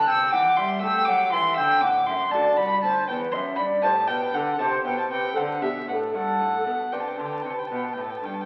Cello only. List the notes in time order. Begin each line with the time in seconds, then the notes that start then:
0.08 C3
0.34 E3
0.58 G3
0.83 A3
1.09 F#3
1.33 E3
1.59 D3
1.83 A2
2.08 F#2
2.33 D2
2.58 C2
2.84 D2
3.08 E2
3.34 F#2
3.59 G2
3.83 A2
4.09 B2
4.34 D3
4.60 C3
4.85 B2
5.11 C3
5.36 D3
5.61 B2
5.88 A2
6.13 G2
6.40 A2
6.66 B2
6.92 C3
7.18 D3
7.45 C3
7.71 B2
7.97 A2
8.23 G2